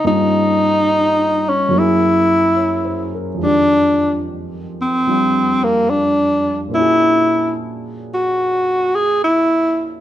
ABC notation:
X:1
M:4/4
L:1/16
Q:"Swing" 1/4=72
K:Fdor
V:1 name="Tenor saxophone"
E6 _D2 _F6 z2 | D4 z2 C4 B,2 D3 z | _F4 z2 ^F4 A2 _F3 z |]
V:2 name="Grand piano"
z12 (3_d2 c2 B2 | z16 | z16 |]
V:3 name="Grand piano"
[G,,G,B,_DF]8 [_G,,_G,B,_FA]8 | [F,,E,F,A,G]8 [F,G,DF]8 | [B,,B,^CD^FA]16 |]